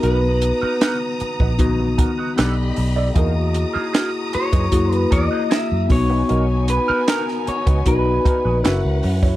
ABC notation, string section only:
X:1
M:4/4
L:1/8
Q:1/4=77
K:B
V:1 name="String section"
[B,ad']6 [=Gdb]2 | [Fad']6- [Fad'] [B,Dg]- | [B,Dg]6 [CBf]2 |]